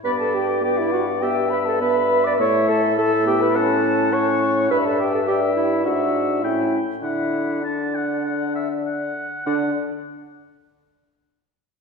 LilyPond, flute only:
\new Staff \with { instrumentName = "Flute" } { \time 4/4 \key d \major \tempo 4 = 102 b''16 a''16 g''8 g''16 e''16 fis''8 g''8 b''16 a''16 b''8. d'''16 | cis'''8 a''8 a''8 g''16 b''16 a''4 cis'''4 | b''16 a''16 g''16 a''16 g''8 e''8 fis''4 e''8. r16 | e''4 d''2~ d''8 r8 |
d''8 r2. r8 | }